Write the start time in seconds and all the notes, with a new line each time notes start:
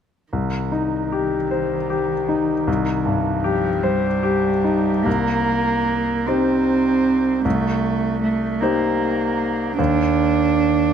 0.32 C2 D#3
0.72 D#4
1.12 G4
1.51 C5
1.90 G4
2.29 D#4
2.67 C2
3.06 G2
3.44 F3 G4
3.83 G3 C5
4.23 G4
4.64 D#4
5.05 C2 A#3
6.26 C4 D#4 G4 C5
7.45 C2 A3
8.23 A3
8.60 A#3 D#4 G4 C5
9.78 D#2 D4